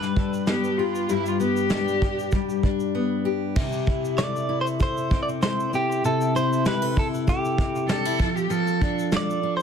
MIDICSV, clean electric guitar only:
0, 0, Header, 1, 2, 480
1, 0, Start_track
1, 0, Key_signature, 0, "major"
1, 0, Tempo, 617920
1, 851, Time_signature, 4, 2, 24, 8
1, 7474, End_track
2, 0, Start_track
2, 0, Title_t, "Clean electric guitar"
2, 0, Program_c, 0, 27
2, 0, Note_on_c, 0, 71, 76
2, 2295, Note_off_c, 0, 71, 0
2, 3248, Note_on_c, 0, 74, 94
2, 3579, Note_off_c, 0, 74, 0
2, 3583, Note_on_c, 0, 72, 84
2, 3624, Note_off_c, 0, 72, 0
2, 3748, Note_on_c, 0, 72, 92
2, 4038, Note_off_c, 0, 72, 0
2, 4060, Note_on_c, 0, 74, 87
2, 4102, Note_off_c, 0, 74, 0
2, 4216, Note_on_c, 0, 72, 90
2, 4436, Note_off_c, 0, 72, 0
2, 4468, Note_on_c, 0, 67, 92
2, 4700, Note_off_c, 0, 67, 0
2, 4704, Note_on_c, 0, 69, 91
2, 4921, Note_off_c, 0, 69, 0
2, 4941, Note_on_c, 0, 72, 84
2, 5159, Note_off_c, 0, 72, 0
2, 5184, Note_on_c, 0, 71, 88
2, 5424, Note_off_c, 0, 71, 0
2, 5429, Note_on_c, 0, 69, 81
2, 5491, Note_off_c, 0, 69, 0
2, 5665, Note_on_c, 0, 67, 71
2, 6345, Note_off_c, 0, 67, 0
2, 7120, Note_on_c, 0, 74, 106
2, 7429, Note_off_c, 0, 74, 0
2, 7432, Note_on_c, 0, 72, 96
2, 7474, Note_off_c, 0, 72, 0
2, 7474, End_track
0, 0, End_of_file